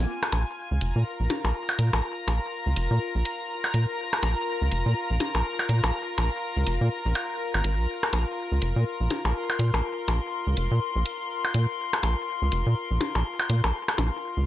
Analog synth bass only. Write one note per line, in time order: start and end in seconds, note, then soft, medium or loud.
0.32 0.45 A#1 medium
0.71 0.80 C#2 medium
0.81 0.93 F1 medium
0.96 1.04 A#2 medium
1.20 1.28 A#1 medium
1.44 1.53 A#1 medium
1.79 1.91 A#2 medium
1.93 2.01 A#1 medium
2.27 2.40 A#1 medium
2.66 2.75 C#2 medium
2.76 2.88 F1 medium
2.91 2.99 A#2 loud
3.15 3.24 A#1 medium
3.74 3.86 A#2 medium
4.23 4.35 A#1 medium
4.62 4.70 C#2 medium
4.72 4.84 F1 medium
4.86 4.94 A#2 medium
5.10 5.19 A#1 medium
5.35 5.43 A#1 medium
5.69 5.81 A#2 medium
5.84 5.92 A#1 medium
6.18 6.30 A#1 medium
6.57 6.65 C#2 medium
6.67 6.79 F1 medium
6.81 6.89 A#2 loud
7.06 7.14 A#1 medium
7.54 7.63 G#1 medium
7.64 7.80 G#1 medium
7.79 7.87 A#1 medium
8.13 8.25 A#1 medium
8.52 8.60 C#2 medium
8.62 8.74 F1 medium
8.76 8.84 A#2 loud
9.00 9.09 A#1 medium
9.25 9.33 A#1 medium
9.59 9.71 A#2 medium
9.74 9.82 A#1 medium
10.08 10.20 A#1 medium
10.47 10.55 C#2 medium
10.57 10.69 F1 medium
10.71 10.80 A#2 loud
10.96 11.04 A#1 medium
11.54 11.67 A#2 medium
12.03 12.15 A#1 loud
12.42 12.50 C#2 medium
12.52 12.64 F1 medium
12.66 12.75 A#2 loud
12.91 12.99 A#1 medium
13.15 13.24 A#1 medium
13.50 13.62 A#2 medium
13.64 13.72 A#1 medium
13.98 14.10 A#1 medium
14.37 14.45 C#2 medium